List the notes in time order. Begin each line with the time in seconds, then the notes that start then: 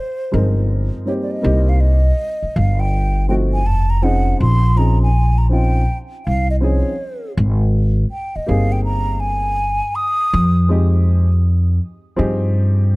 Already playing: C5
0.32 G1 F3 G#3 C4 D#4 A#4
1.05 G3 A#3 C4 D#4 G4 C#5
1.23 D5
1.31 D#5
1.42 C2 G3 A#3 C4 D#4 G4
1.69 F5
1.80 D#5
2.43 muted upright bass stroke
2.56 G1 F5
2.80 G5
3.28 F3 A3 C4 D#4 F#4 G5
3.53 G#5
3.66 F1 A5
3.90 A#5
4.02 F3 C4 C#4 D#4 G#4 F#5
4.41 A#1 C6
4.76 F3 C4 C#4 D#4 G#4 A#5
5.03 G#5
5.38 A#5
5.49 F3 C4 C#4 D#4 F4 G5
6.26 C2 F5
6.50 D#5
6.60 F3 C4 C#4 D#4 G#4 C#5
7.37 G#1
8.11 G5
8.36 D#5, muted upright bass stroke
8.47 G1 A#3 C4 D#4 G4 G#4 F5
8.72 G5
8.84 A#5
9.20 G#5
9.95 D#6
10.33 F2
10.69 F3 G#3 C4 D#4 G4
12.16 G2 F3 C4 D#4 G4 G#4